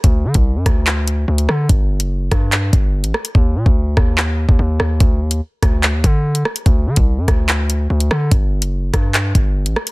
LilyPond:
<<
  \new Staff \with { instrumentName = "808-style bass" } { \clef bass \time 4/4 \key ees \lydian \tempo 4 = 145 d,8 d16 c,8 fis,16 d,4. d,8 d8 | g,,8. fis,,8. g,4 g,,8. a,,16 r8 | ees,8 bes,16 d,8. ees,4~ ees,16 ees,16 ees,8 ees,8 | d,8 ees,8 r8 d,8. ees,16 d4 r8 |
d,8 d16 c,8 fis,16 d,4. d,8 d8 | g,,8. fis,,8. g,4 g,,8. a,,16 r8 | }
  \new DrumStaff \with { instrumentName = "Drums" } \drummode { \time 4/4 <hh bd>8. <hh bd>16 r8 <hh bd ss>8 <hc hh>8 hh8 r16 hh16 ss8 | <hh bd>8. hh16 r8 <hh bd ss>8 <hc hh>8 <hh bd>8 r16 hh16 ss16 hh16 | bd8. bd16 r8 <bd ss>8 hc8. bd16 r8 ss8 | <hh bd>8. hh16 r8 <hh bd ss>8 <hc hh>8 <hh bd>8 r16 hh16 ss16 hh16 |
<hh bd>8. <hh bd>16 r8 <hh bd ss>8 <hc hh>8 hh8 r16 hh16 ss8 | <hh bd>8. hh16 r8 <hh bd ss>8 <hc hh>8 <hh bd>8 r16 hh16 ss16 hh16 | }
>>